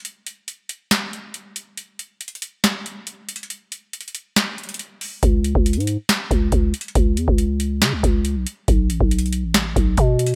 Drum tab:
HH |x-----------x-----------x-----------x-----------x-----------x-----------x-----------x-----------|x-----------x-----------x---x---x---x-----------x-----------x-----------x-----------x---x---x---|x-----------x-----------x---x---x---x-----------x-----------x--x--x--x--x-----------o-----------|x-----------x-----------x---x---x---x-----------x-----------x-----------x-----------x---x---x---|
SD |------------------------------------------------o-----------------------------------------------|------------------------------------------------o-----------------------------------------------|------------------------------------------------o-----------------------------------------------|------------------------------------------------o-----------------------------------------------|
BD |------------------------------------------------------------------------------------------------|------------------------------------------------------------------------------------------------|------------------------------------------------------------------------------------------------|o-----------------o-----------------------------------------o-----------o-----------------------|

HH |x-----------x-----------x-----------x-----------x-----------x-----------x-----------x-----------|x-----------x-----------x---x---x---x-----------x-----------x-----------x-----------x---x-------|
SD |------------------------------------------------o-----------------------------------------------|------------------------------------------------o-----------------------------------------------|
BD |o-----------------o-----------------------------------------o-----------------------------------|o-----------------o-----------------------------------------o-----------o-----------------------|